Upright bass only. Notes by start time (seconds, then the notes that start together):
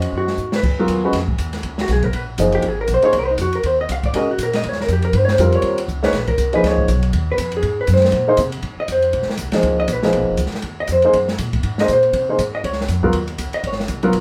Already playing: F2
0.13 F#2
0.38 G#2
0.63 C#2
0.88 D#2
1.13 F2
1.39 D#2
1.63 C#2
1.89 B1
2.14 A#1
2.38 F#1
2.63 G#1
2.88 A#1
3.03 muted upright bass stroke
3.13 C2
3.38 F2
3.64 D#2
3.89 C2
4.13 C3
4.39 A#2
4.63 D#2
4.88 F2
5.13 G2
5.39 F2
5.63 D#2
5.88 C#2
6.13 A#1
6.38 C2
6.63 C#2
6.88 B1
7.13 D#2
7.38 F2
7.63 G#2
7.88 F#2
8.13 A#2
8.38 C3
8.63 G#2
8.77 muted upright bass stroke
8.88 F2
9.13 A#1
9.27 muted upright bass stroke
9.38 C2
9.52 muted upright bass stroke
9.63 C#2
9.88 A#1
10.13 B1
10.21 G#1
10.30 F1
10.38 C#2
10.53 muted upright bass stroke
10.63 D#2
10.89 F2
11.13 F#2
11.39 A#2
11.63 G#2
11.89 A#2
12.13 C3
12.38 G#2
12.64 C#2
12.88 F2
13.13 D#2
13.39 C#2
13.53 muted upright bass stroke
13.64 G#1
13.88 C2
14.13 B1